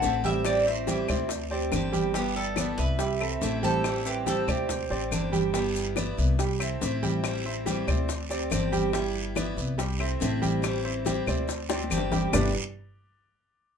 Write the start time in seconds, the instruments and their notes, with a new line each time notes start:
Already playing: grand piano C4 C5 E5, cuban tres F#5, flute A5
0.02 upright bass A1, steel-string acoustic guitar C3 E3 A3 C4 E4, high bongo, low bongo, high conga, short guiro, maracas
0.24 grand piano G3 G4 G5, cuban tres E5, flute G5, high conga, short guiro, maracas
0.45 steel-string acoustic guitar E3 G3 C4 E4, cuban tres D5, flute G5, high bongo, high conga, long guiro, claves, maracas
0.66 grand piano C4 C5 E5, cuban tres C5, flute E5, high bongo, high conga
0.87 steel-string acoustic guitar E3 G3 C4 E4, grand piano G3 G4 G5, high bongo, high conga, short guiro, maracas
1.08 upright bass D2, steel-string acoustic guitar G3 C4 E4, grand piano C4 C5 D5, high bongo, high conga, low conga, short guiro, claves, maracas
1.29 muted steel-string acoustic guitar stroke, high bongo, high conga, long guiro, maracas
1.50 steel-string acoustic guitar G3 C4 G4, grand piano C4 C5 D5, high bongo, high conga
1.72 upright bass G1, steel-string acoustic guitar D3 G3 C4 G4, high bongo, low bongo, high conga, short guiro, claves, maracas
1.92 grand piano G3 G4 G5, high conga, short guiro, maracas
2.14 grand piano G3 G4 G5, steel-string acoustic guitar G3 B3 E4, cuban tres G4, flute B4, high bongo, high conga, long guiro, maracas
2.35 cuban tres A4, flute D5, high bongo, high conga
2.56 steel-string acoustic guitar G3 B3 E4, grand piano B3 B4 D5, high bongo, high conga, short guiro, claves, maracas
2.77 upright bass C2, steel-string acoustic guitar B3 E4, cuban tres B4, flute E5, high bongo, high conga, short guiro, maracas
2.99 grand piano G3 G4 G5, muted steel-string acoustic guitar stroke, high bongo, high conga, long guiro, maracas
3.20 steel-string acoustic guitar A3 C4 E4, grand piano C4 A4 E5, high bongo, high conga, claves
3.41 upright bass A1, steel-string acoustic guitar C3 E3 A3 C4 E4, high bongo, low bongo, high conga, short guiro, maracas
3.62 grand piano G3 G4 G5, cuban tres A4, flute C5, high conga, short guiro, maracas
3.84 steel-string acoustic guitar E3 G3 C4 E4, high bongo, long guiro, claves, maracas
4.05 grand piano C4 C5 E5, cuban tres G4, flute B4, high bongo, high conga, maracas
4.26 steel-string acoustic guitar E3 G3 C4 E4, grand piano G3 G4 G5, cuban tres A4, flute C5, high bongo, high conga, short guiro, maracas
4.47 upright bass D2, steel-string acoustic guitar G3 C4 E4, grand piano C4 C5 D5, cuban tres G4, flute C5, high bongo, high conga, low conga, short guiro, claves, maracas
4.69 muted steel-string acoustic guitar stroke, high bongo, high conga, low conga, long guiro, maracas
4.90 upright bass A1, steel-string acoustic guitar G3 C4 G4, grand piano C4 C5 D5, high bongo, high conga
5.11 upright bass G1, steel-string acoustic guitar D3 G3 C4 G4, high bongo, low bongo, high conga, short guiro, claves, maracas
5.32 grand piano G3 G4 G5, high conga, short guiro, maracas
5.53 grand piano G3 G4 G5, steel-string acoustic guitar G3 B3 E4, high bongo, high conga, long guiro, maracas
5.75 high bongo, high conga, maracas
5.96 steel-string acoustic guitar G3 B3 E4, grand piano B3 B4 D5, high bongo, high conga, short guiro, claves, maracas
6.17 upright bass C2, steel-string acoustic guitar B3 E4, high bongo, high conga, short guiro, maracas
6.39 grand piano G3 G4 G5, muted steel-string acoustic guitar stroke, high bongo, long guiro, maracas
6.60 steel-string acoustic guitar A3 C4 E4, grand piano C4 C5 E5, high bongo, high conga, claves, maracas
6.81 upright bass A1, steel-string acoustic guitar C3 E3 A3 C4 E4, high bongo, low bongo, high conga, short guiro, maracas
7.03 grand piano G3 G4 G5, high conga, short guiro, maracas
7.24 steel-string acoustic guitar E3 G3 C4 E4, high bongo, high conga, long guiro, claves, maracas
7.45 grand piano C4 C5 E5, high bongo, high conga
7.66 steel-string acoustic guitar E3 G3 C4 E4, grand piano G3 G4 G5, high bongo, high conga, short guiro, maracas
7.87 upright bass D2, steel-string acoustic guitar G3 C4 E4, grand piano C4 C5 D5, high bongo, high conga, low conga, short guiro, claves, maracas
8.08 muted steel-string acoustic guitar stroke, high bongo, long guiro, maracas
8.29 steel-string acoustic guitar G3 C4 G4, grand piano C4 C5 D5, high bongo, high conga, maracas
8.50 upright bass G1, steel-string acoustic guitar D3 G3 C4 G4, high bongo, low bongo, high conga, short guiro, claves, maracas
8.72 grand piano G3 G4 G5, high conga, short guiro, maracas
8.93 steel-string acoustic guitar G3 B3 E4, grand piano G3 G4 G5, high bongo, long guiro, maracas
9.15 high bongo, high conga
9.35 steel-string acoustic guitar G3 B3 E4, grand piano B3 B4 D5, high bongo, high conga, short guiro, claves, maracas
9.57 upright bass C2, steel-string acoustic guitar B3 E4, high bongo, high conga, short guiro, maracas
9.78 grand piano G3 G4 G5, muted steel-string acoustic guitar stroke, high bongo, high conga, long guiro, maracas
9.99 steel-string acoustic guitar A3 C4 E4, grand piano C4 C5 E5, high bongo, high conga, claves
10.20 upright bass A1, steel-string acoustic guitar C3 E3 A3 C4 E4, high bongo, low bongo, high conga, short guiro, maracas
10.42 grand piano G3 G4 G5, high conga, short guiro, maracas
10.62 steel-string acoustic guitar E3 G3 C4 E4, high bongo, long guiro, claves, maracas
10.84 grand piano C4 C5 E5, high bongo, high conga
11.05 steel-string acoustic guitar E3 G3 C4 E4, grand piano G3 G4 G5, high bongo, high conga, short guiro, maracas
11.26 upright bass D2, steel-string acoustic guitar G3 C4 E4, grand piano C4 C5 D5, high bongo, high conga, low conga, short guiro, claves, maracas
11.47 muted steel-string acoustic guitar stroke, high bongo, high conga, long guiro, maracas
11.69 steel-string acoustic guitar G3 C4 G4, grand piano C4 C5 D5, high bongo, high conga, maracas
11.84 high bongo
11.90 upright bass G1, steel-string acoustic guitar D3 G3 C4 G4, high conga, short guiro, claves, maracas
11.98 low bongo
12.12 grand piano G3 G4 G5, low bongo, high conga, short guiro, maracas
12.33 upright bass G1, grand piano G3 D4 E4 G4 B4 D5, steel-string acoustic guitar G3 B3 E4, low bongo, low conga, long guiro, claves, maracas